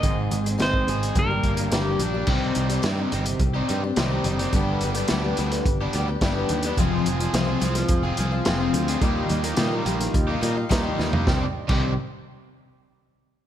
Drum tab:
CC |----------------|x---------------|----------------|----------------|
HH |x-xxx-xxx-xxx-x-|--xxx-xxx-x-x-xx|x-xxx-xxx-x-x-xx|x-xxx-xxx-x-x-xx|
SD |----o-------o---|----o-------o---|----o--o----o---|----o--o----o---|
FT |----------------|----------------|----------------|----------------|
BD |o----o--o-o-----|o-------o-------|o-------o---o---|o-------o-------|

CC |----------------|---x------------|
HH |x-xxx-xxx-x-x---|----------------|
SD |----o--o----o-o-|o---------------|
FT |---------------o|----------------|
BD |o-------o---o---|o--o------------|